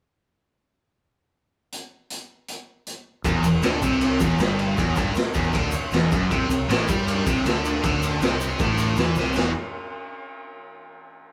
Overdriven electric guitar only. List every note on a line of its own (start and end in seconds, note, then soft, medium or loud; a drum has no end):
3.25 3.44 E2 loud
3.46 3.60 E2 medium
3.63 3.82 D3 medium
3.83 4.20 C3 loud
4.21 4.39 E2 loud
4.40 4.77 G2 medium
4.78 4.96 E2 loud
4.97 5.15 G2 loud
5.16 muted overdriven electric guitar stroke medium
5.34 5.53 E2 loud
5.53 5.72 D3 loud
5.73 muted overdriven electric guitar stroke medium
5.93 6.11 E2 loud
6.12 6.30 F#2 loud
6.31 6.49 C3 loud
6.50 6.65 C3 medium
6.69 6.87 A2 loud
6.88 7.25 G3 loud
7.26 7.45 C3 loud
7.46 7.83 D3 loud
7.85 8.21 D3 loud
8.23 8.59 C3 medium
8.61 8.97 A2 loud
8.99 9.16 E3 loud
9.18 9.35 C3 loud
9.35 9.50 E2 loud
9.35 9.50 B2 loud
9.35 9.51 E3 loud